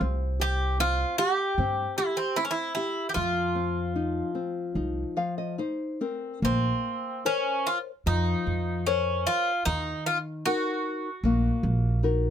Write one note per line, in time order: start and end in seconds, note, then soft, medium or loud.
0.01 1.03 C2 medium
0.01 0.78 C4 medium
0.40 0.78 G4 soft
0.40 0.80 G4 medium
0.80 1.18 C4 medium
0.80 1.18 F4 medium
1.18 1.97 G4 medium
1.18 1.57 G4 soft
1.58 1.84 G2 medium
1.58 1.97 C4 medium
1.98 2.18 E4 medium
1.98 2.36 G4 medium
2.17 2.37 C4 medium
2.36 2.75 C4 medium
2.36 2.43 E4 medium
2.45 2.51 C#4 medium
2.51 2.74 E4 medium
2.75 3.09 E4 medium
2.75 3.15 G4 soft
3.09 3.14 G4 medium
3.14 4.20 F2 medium
3.14 5.16 F3 medium
3.14 5.54 F4 medium
3.55 3.94 C4 soft
3.96 4.34 D#4 soft
4.35 4.74 C4 soft
4.75 5.02 C2 medium
4.75 5.16 D#4 soft
5.17 5.58 F3 soft
5.17 5.37 F5 medium
5.38 5.58 D#5 medium
5.58 6.00 D#4 soft
5.58 5.98 C5 medium
6.01 6.41 C4 soft
6.01 6.40 A#4 medium
6.42 6.69 A#1 medium
6.42 7.23 A#3 medium
6.42 7.26 C4 medium
7.25 7.68 C#4 medium
7.25 7.91 A#4 soft
7.25 7.91 C5 soft
7.25 7.91 C#5 soft
7.67 7.78 F4 medium
8.06 8.33 F2 medium
8.06 8.84 F3 medium
8.06 8.89 D#4 medium
8.47 9.24 F2 medium
8.87 9.28 C#4 medium
8.87 9.51 A#4 soft
8.87 9.51 C5 soft
8.87 9.51 C#5 soft
9.27 9.65 F4 medium
9.65 9.92 D#2 medium
9.65 10.43 D#3 medium
9.65 10.06 D#4 medium
10.06 10.17 F4 medium
10.46 11.08 D#4 soft
10.46 11.98 F#4 medium
10.46 11.09 F#4 soft
10.46 11.09 A#4 soft
11.23 11.49 A#1 medium
11.23 12.00 A#3 medium
11.63 12.30 A#1 medium
12.03 12.30 D#4 soft
12.03 12.30 F#4 soft
12.03 12.30 A#4 medium